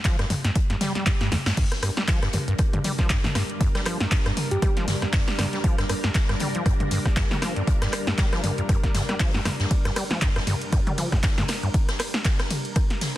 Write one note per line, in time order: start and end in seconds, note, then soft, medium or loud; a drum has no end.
0.04 0.17 F3 medium
0.04 kick loud
0.04 snare loud
0.04 clap loud
0.04 closed hi-hat medium
0.19 0.25 G2 medium
0.19 cross-stick medium
0.19 snare soft
0.19 closed hi-hat soft
0.30 0.35 G2 medium
0.30 closed hi-hat medium
0.30 open hi-hat medium
0.30 mid tom loud
0.44 0.51 G2 loud
0.44 snare medium
0.44 closed hi-hat medium
0.56 kick loud
0.56 closed hi-hat medium
0.56 swell medium
0.70 0.76 G2 medium
0.70 snare soft
0.70 closed hi-hat soft
0.80 0.93 G3 loud
0.80 snare medium
0.80 closed hi-hat medium
0.80 open hi-hat loud
0.80 mid tom medium
0.95 1.04 G3 medium
0.95 snare soft
0.95 closed hi-hat soft
1.06 1.11 G2 medium
1.06 kick loud
1.06 snare loud
1.06 clap loud
1.06 closed hi-hat medium
1.20 1.30 G2 loud
1.20 snare medium
1.20 closed hi-hat soft
1.32 1.37 F2 loud
1.32 snare medium
1.32 closed hi-hat medium
1.32 open hi-hat medium
1.32 mid tom loud
1.46 1.52 G2 loud
1.46 snare loud
1.46 closed hi-hat soft
1.46 closed hi-hat medium
1.57 1.65 G2 loud
1.57 13.17 G3 medium
1.57 13.17 D4 medium
1.57 13.17 A#4 medium
1.57 kick loud
1.57 closed hi-hat medium
1.57 crash medium
1.72 cross-stick medium
1.72 snare soft
1.72 closed hi-hat medium
1.82 1.91 G2 medium
1.82 cross-stick medium
1.82 closed hi-hat medium
1.82 open hi-hat loud
1.97 2.03 G3 medium
1.97 snare medium
1.97 closed hi-hat soft
2.08 2.20 F3 medium
2.08 kick loud
2.08 cross-stick soft
2.08 snare loud
2.08 clap loud
2.08 closed hi-hat medium
2.08 closed hi-hat loud
2.22 2.29 G2 medium
2.22 cross-stick medium
2.22 snare soft
2.22 closed hi-hat soft
2.33 2.38 G2 medium
2.33 closed hi-hat medium
2.33 open hi-hat medium
2.33 mid tom loud
2.48 2.54 G2 loud
2.48 closed hi-hat medium
2.58 kick loud
2.58 cross-stick medium
2.58 closed hi-hat medium
2.73 2.79 G2 medium
2.73 closed hi-hat soft
2.73 mid tom loud
2.84 2.92 G3 medium
2.84 closed hi-hat medium
2.84 open hi-hat loud
2.84 mid tom medium
2.98 3.08 F3 medium
2.98 kick medium
2.98 cross-stick soft
2.98 snare soft
2.98 closed hi-hat soft
3.10 3.18 G2 medium
3.10 kick loud
3.10 snare loud
3.10 clap loud
3.10 closed hi-hat medium
3.24 3.28 G2 medium
3.24 snare medium
3.24 closed hi-hat soft
3.24 mid tom loud
3.35 3.43 G2 loud
3.35 cross-stick medium
3.35 snare medium
3.35 closed hi-hat medium
3.35 open hi-hat medium
3.50 closed hi-hat soft
3.61 3.69 G2 medium
3.61 kick loud
3.61 closed hi-hat medium
3.75 3.81 G3 medium
3.75 cross-stick medium
3.75 snare soft
3.75 closed hi-hat medium
3.85 3.98 F3 medium
3.85 cross-stick medium
3.85 clap soft
3.85 closed hi-hat medium
3.85 open hi-hat loud
4.00 4.07 G2 medium
4.00 snare medium
4.00 closed hi-hat soft
4.11 4.16 G2 medium
4.11 kick loud
4.11 cross-stick soft
4.11 snare loud
4.11 clap loud
4.11 closed hi-hat medium
4.11 closed hi-hat loud
4.25 4.32 G2 loud
4.25 cross-stick medium
4.25 snare soft
4.25 closed hi-hat soft
4.37 closed hi-hat medium
4.37 open hi-hat loud
4.37 mid tom loud
4.51 4.57 G2 medium
4.51 4.58 G4 medium
4.51 closed hi-hat medium
4.62 4.70 G3 medium
4.62 4.72 G4 medium
4.62 kick loud
4.62 cross-stick medium
4.62 closed hi-hat medium
4.77 4.86 F3 medium
4.77 snare soft
4.77 closed hi-hat soft
4.88 4.96 G2 medium
4.88 snare medium
4.88 closed hi-hat medium
4.88 open hi-hat loud
4.88 mid tom medium
5.02 5.06 G2 medium
5.02 cross-stick soft
5.02 snare soft
5.02 closed hi-hat soft
5.13 5.21 G2 loud
5.13 kick loud
5.13 snare loud
5.13 clap loud
5.13 closed hi-hat medium
5.13 open hi-hat medium
5.28 snare medium
5.39 5.47 G2 medium
5.39 cross-stick medium
5.39 snare medium
5.39 closed hi-hat medium
5.39 open hi-hat loud
5.39 mid tom loud
5.53 5.59 G3 medium
5.53 snare soft
5.53 closed hi-hat soft
5.64 5.76 F3 medium
5.64 kick loud
5.64 closed hi-hat medium
5.78 5.85 G2 medium
5.78 cross-stick medium
5.78 snare soft
5.78 closed hi-hat medium
5.89 5.94 G2 medium
5.89 cross-stick medium
5.89 closed hi-hat medium
5.89 open hi-hat loud
6.04 6.10 G2 loud
6.04 snare medium
6.15 kick loud
6.15 cross-stick soft
6.15 snare loud
6.15 clap loud
6.15 closed hi-hat medium
6.29 6.35 G2 medium
6.29 cross-stick medium
6.29 snare soft
6.29 closed hi-hat soft
6.40 6.48 G3 medium
6.40 closed hi-hat medium
6.40 open hi-hat loud
6.40 mid tom loud
6.55 6.64 F3 medium
6.55 closed hi-hat medium
6.66 6.74 G2 medium
6.66 kick loud
6.66 cross-stick medium
6.66 closed hi-hat medium
6.80 6.84 G2 medium
6.80 closed hi-hat soft
6.80 mid tom loud
6.91 6.99 G2 loud
6.91 closed hi-hat medium
6.91 open hi-hat loud
6.91 mid tom medium
7.06 kick medium
7.06 cross-stick soft
7.06 snare soft
7.06 closed hi-hat soft
7.17 7.24 G2 medium
7.17 kick loud
7.17 snare loud
7.17 clap loud
7.17 closed hi-hat medium
7.31 7.37 G3 medium
7.31 snare medium
7.31 closed hi-hat soft
7.31 mid tom loud
7.42 7.54 F3 medium
7.42 cross-stick medium
7.42 snare medium
7.42 closed hi-hat medium
7.42 open hi-hat loud
7.56 7.62 G2 medium
7.56 closed hi-hat soft
7.67 7.72 G2 medium
7.67 kick loud
7.67 closed hi-hat medium
7.81 7.88 G2 loud
7.81 cross-stick medium
7.81 snare medium
7.81 closed hi-hat medium
7.93 cross-stick medium
7.93 clap soft
7.93 closed hi-hat medium
7.93 open hi-hat loud
8.07 8.13 G2 medium
8.07 snare medium
8.07 closed hi-hat soft
8.18 8.26 G3 medium
8.18 kick loud
8.18 cross-stick soft
8.18 snare loud
8.18 clap loud
8.18 closed hi-hat medium
8.33 8.42 F3 medium
8.33 cross-stick medium
8.33 snare soft
8.33 closed hi-hat soft
8.43 8.52 G2 medium
8.43 closed hi-hat medium
8.43 open hi-hat loud
8.43 mid tom medium
8.58 8.62 G2 medium
8.58 closed hi-hat medium
8.69 8.77 G2 loud
8.69 kick loud
8.69 cross-stick medium
8.69 closed hi-hat medium
8.69 closed hi-hat loud
8.83 kick medium
8.83 snare soft
8.83 closed hi-hat soft
8.95 9.02 G2 medium
8.95 snare medium
8.95 closed hi-hat medium
8.95 open hi-hat loud
8.95 mid tom medium
9.09 9.15 G3 medium
9.09 cross-stick soft
9.09 snare soft
9.09 closed hi-hat soft
9.19 9.32 F3 medium
9.19 kick loud
9.19 snare loud
9.19 clap loud
9.19 closed hi-hat medium
9.19 open hi-hat medium
9.34 9.40 G2 medium
9.34 snare medium
9.45 9.50 G2 medium
9.45 cross-stick medium
9.45 snare medium
9.45 closed hi-hat medium
9.45 open hi-hat loud
9.45 mid tom medium
9.59 9.66 G2 loud
9.59 snare medium
9.59 closed hi-hat soft
9.70 kick loud
9.70 closed hi-hat medium
9.70 ride medium
9.85 9.91 G2 medium
9.85 cross-stick medium
9.85 snare soft
9.85 closed hi-hat medium
9.96 10.04 G3 medium
9.96 cross-stick medium
9.96 closed hi-hat medium
9.96 open hi-hat loud
9.96 ride medium
10.11 10.20 F3 medium
10.11 snare medium
10.11 closed hi-hat soft
10.22 10.30 G2 medium
10.22 kick loud
10.22 cross-stick soft
10.22 snare loud
10.22 clap loud
10.22 closed hi-hat medium
10.22 ride medium
10.36 10.40 G2 medium
10.36 cross-stick medium
10.36 snare soft
10.36 closed hi-hat soft
10.47 10.55 G2 loud
10.47 closed hi-hat medium
10.47 open hi-hat loud
10.47 mid tom medium
10.47 ride medium
10.61 closed hi-hat soft
10.72 10.80 G2 medium
10.72 kick loud
10.72 cross-stick medium
10.72 closed hi-hat medium
10.72 ride medium
10.87 10.93 G3 medium
10.87 closed hi-hat soft
10.87 mid tom medium
10.98 11.10 F3 medium
10.98 closed hi-hat medium
10.98 open hi-hat loud
10.98 mid tom medium
10.98 ride medium
11.12 11.18 G2 medium
11.12 kick medium
11.12 cross-stick soft
11.12 snare soft
11.12 closed hi-hat soft
11.23 11.28 G2 medium
11.23 kick loud
11.23 snare loud
11.23 clap loud
11.23 closed hi-hat medium
11.23 ride medium
11.38 11.44 G2 loud
11.38 snare medium
11.38 closed hi-hat soft
11.38 mid tom medium
11.48 cross-stick medium
11.48 snare medium
11.48 closed hi-hat medium
11.48 open hi-hat medium
11.48 ride medium
11.63 11.69 G2 medium
11.63 closed hi-hat soft
11.74 kick loud
11.74 closed hi-hat medium
11.74 ride medium
11.88 cross-stick medium
11.88 snare medium
11.88 closed hi-hat medium
12.00 cross-stick medium
12.00 clap soft
12.00 closed hi-hat medium
12.00 open hi-hat loud
12.00 ride medium
12.14 snare medium
12.14 closed hi-hat soft
12.24 kick loud
12.24 cross-stick soft
12.24 snare loud
12.24 clap loud
12.24 closed hi-hat loud
12.24 closed hi-hat medium
12.24 ride medium
12.39 cross-stick medium
12.39 snare soft
12.39 closed hi-hat soft
12.50 closed hi-hat medium
12.50 open hi-hat medium
12.50 mid tom medium
12.50 ride medium
12.65 closed hi-hat medium
12.76 kick loud
12.76 cross-stick medium
12.76 closed hi-hat medium
12.76 ride medium
12.90 snare soft
12.90 closed hi-hat soft
13.01 snare medium
13.01 closed hi-hat medium
13.01 open hi-hat loud
13.01 mid tom medium
13.01 ride medium